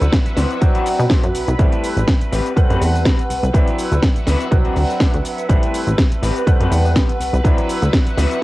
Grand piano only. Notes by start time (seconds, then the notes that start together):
Already playing: F#3 C4 D4 E4
0.61 F#3 C4 D4 F#4
1.59 G3 A3 C4 E4 B4
2.56 G3 A3 C4 B4 F#5
3.53 F#3 C4 D4 E4 B4
4.51 F#3 C4 D4 F#4 B4
5.49 G3 A3 C4 E4 B4
6.46 G3 A3 C4 B4 F#5
7.44 F#3 C4 D4 E4 B4